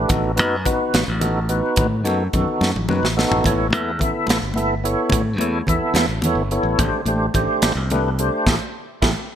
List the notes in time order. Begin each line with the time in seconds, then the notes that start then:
Already playing: B4
0.08 A1 B3 D#4 F#4 A4, kick, closed hi-hat, muted conga, low conga
0.24 low conga
0.36 F#2 B3 D#4 F#4 B4, closed hi-hat, high conga
0.65 A1 B3 D#4 F#4 B4, kick, closed hi-hat, low conga
0.94 A1, snare, closed hi-hat, muted conga
1.08 A1, low conga
1.20 B3 D#4 F#4 A4, closed hi-hat, high conga, low conga
1.49 B3 D#4 F#4 B4, closed hi-hat
1.66 low conga
1.76 A2, kick, closed hi-hat, muted conga, low conga
2.04 F#2 B3 D#4 F#4 A4, closed hi-hat, high conga
2.33 F#2 B3 D#4 F#4 A4, kick, closed hi-hat, low conga
2.48 low conga
2.61 F#2, snare, muted conga
2.75 A1, high tom, low conga
2.88 F#2 B3 D#4 F#4 B4, high conga, low conga
3.03 A1, snare
3.17 B3 D#4 F#4 A4, snare, low conga
3.31 A1, floor tom
3.44 A1 B3 E4 A4 C#5, kick, closed hi-hat, muted conga, low conga
3.58 low conga
3.70 E2 B3 E4 A4 E5, closed hi-hat, high conga
3.99 A1 B3 E4 A4 E5, kick, closed hi-hat, low conga
4.27 A1, snare, closed hi-hat, muted conga
4.41 G1, low conga
4.54 B3 E4 A4 E5, closed hi-hat, high conga
4.84 B3 E4 A4 C#5, closed hi-hat
4.96 low conga
5.10 A2, kick, closed hi-hat, muted conga, low conga
5.25 low conga
5.38 E2 B3 E4 A4 C#5, closed hi-hat, high conga
5.67 E2 B3 E4 A4 E5, kick, closed hi-hat, low conga
5.94 E2, snare, closed hi-hat, muted conga
6.08 A1, low conga
6.22 E2 B3 E4 A4 C#5, closed hi-hat, high conga, low conga
6.35 G1
6.51 B3 E4 A4 C#5, closed hi-hat
6.63 A1, low conga
6.79 A1 A3 D4 G4 C5, kick, closed hi-hat, muted conga, low conga
6.93 low conga
7.05 A1 A3 D4 G4 C5, closed hi-hat, high conga
7.34 A1 A3 D4 G4 C5, kick, closed hi-hat, low conga
7.62 A1, snare, closed hi-hat, muted conga
7.75 C2, low conga
7.90 A3 D4 G4 B4, closed hi-hat, high conga, low conga
8.19 A3 D4 G4 C5, closed hi-hat
8.33 low conga
8.46 A1 E4 G4 A4, kick, snare, muted conga
9.02 A1 E4 G4 A4, kick, snare, muted conga